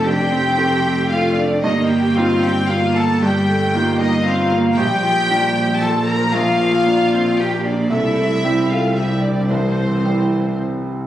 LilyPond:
<<
  \new Staff \with { instrumentName = "Violin section" } { \time 3/4 \key c \dorian \tempo 4 = 114 g''2 f''8 d''8 | ees''8 g''8 f''8 g''8 f''8 a''8 | g''4. ees''8 f''8 r8 | g''2 a''8 bes''8 |
f''2 g''8 d''8 | e''4. f''8 e''8 d''8 | c''2 r4 | }
  \new Staff \with { instrumentName = "Cello" } { \time 3/4 \key c \dorian g'2 f'8 d'8 | ees'8 g'8 f'8 g'8 f'8 a'8 | g'4. ees'8 f'8 r8 | g'2 a'8 bes'8 |
f'2 g'8 d'8 | e'4. f'8 e'8 d'8 | c'2 r4 | }
  \new Staff \with { instrumentName = "Felt piano" } { \time 3/4 \key c \dorian f,4 <a c' g'>2 | g,4 <bes ees' f'>2 | g,4 <bes ees' f'>2 | bes,,4 <bes d' f'>2 |
bes,,4 <bes d' f'>2 | c,4 <g c' e'>2 | c,4 <g c' e'>2 | }
  \new Staff \with { instrumentName = "Viola" } { \time 3/4 \key c \dorian d'8 c'4. a4 | bes4 c'4 bes4 | g8 a8 bes4 c'8 bes8 | g8 f8 g4 f4 |
bes4 d'8 c'8 bes4 | a4 g8 a8 g4 | e2~ e8 r8 | }
  \new Staff \with { instrumentName = "Double bass" } { \clef bass \time 3/4 \key c \dorian f,,2. | g,,2.~ | g,,2. | bes,,2.~ |
bes,,2. | c,2.~ | c,2. | }
>>